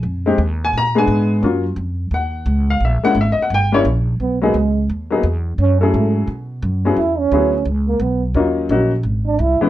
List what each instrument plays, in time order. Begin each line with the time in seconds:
0.03 upright bass F2
0.26 grand piano G#3 C4 D#4 G4
0.38 upright bass D#2
0.65 grand piano G#5
0.73 upright bass A#2
0.78 grand piano A#5
0.95 grand piano G#3 B3 D4 G#4 G#5
1.08 upright bass G#2
1.42 upright bass F#2, grand piano F#3 A#3 C#4 F4
1.76 upright bass F2
2.11 upright bass D#2, grand piano F#5
2.46 upright bass C#2
2.70 grand piano F5
2.80 upright bass A#1
2.85 grand piano E5
3.03 grand piano G#3 A#3 C#4 E4 F#5, muted upright bass stroke
3.15 upright bass G#1
3.21 grand piano E5
3.32 grand piano D#5
3.37 muted upright bass stroke
3.42 grand piano F#5
3.50 upright bass G1
3.54 grand piano G5
3.72 grand piano G3 A#3 C#4 E4 C#5
3.85 upright bass A#1
4.20 upright bass B1, trombone B3
4.42 grand piano F#3 A#3 B3 D#4 G#4, trombone G#3
4.54 upright bass C#2
4.90 upright bass D#2
5.10 grand piano F#3 A#3 B3 D#4 G#4
5.23 upright bass E2
5.58 upright bass F#2, trombone C#4
5.80 grand piano F#3 C#4 E4 G#4 A4, trombone A3
5.94 upright bass G#2
6.28 upright bass B2
6.62 upright bass F#2
6.85 grand piano F#3 B3 C#4 E4 G#4
6.96 upright bass E2, trombone E4
7.19 trombone C#4
7.32 upright bass D2, grand piano F#3 B3 C#4 E4 G#4
7.65 upright bass C#2
7.87 trombone A#3
8.00 upright bass B1, trombone B3
8.34 upright bass D#2, grand piano F#3 A#3 C#4 D#4 F4
8.69 upright bass A#1, grand piano F#3 A#3 C#4 D#4 F#4
9.03 upright bass G#1
9.26 trombone D4
9.39 upright bass C2, trombone E4
9.61 grand piano E3 G#3 B3 C#4 E4, muted upright bass stroke